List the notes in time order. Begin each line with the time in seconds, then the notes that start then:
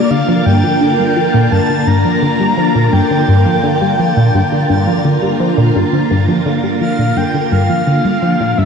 Already playing: D3 A#3 F4 A#4 D5 A6
0.11 D3 F5
0.28 F3
0.46 G2 G5
0.64 F3
0.81 D3
0.99 G3
1.16 F3
1.34 A#2
1.52 G2 A5
1.69 D3
1.87 G2 A#5
2.05 F3
2.22 D3
2.40 G3
2.58 F3
2.75 A#2
2.93 G2 G5
3.11 D3
3.28 G2
3.46 F3
3.64 D3
3.81 G3
3.99 F3
4.17 A#2
4.34 G2
4.52 D3
4.70 G2
4.87 F3
5.05 D3
5.22 G3
5.40 F3
5.58 A#2
5.76 G2
5.93 D3
6.11 G2
6.28 F3
6.46 D3
6.64 G3
6.81 F3 F5
6.99 A#2
7.17 G2 G5
7.34 D3
7.52 G2 F5
7.70 F3
7.87 D3
8.05 G3
8.22 F3
8.40 A#2
8.58 G2 E5